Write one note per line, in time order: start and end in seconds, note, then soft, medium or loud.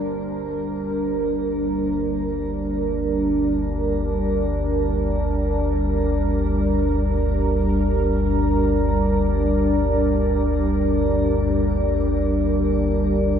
0.00 13.39 G1 medium
0.00 13.39 D2 medium
0.00 13.39 G3 medium
0.00 13.39 D4 medium
0.00 13.39 A#4 medium
0.00 0.77 C5 medium
1.85 13.39 D5 medium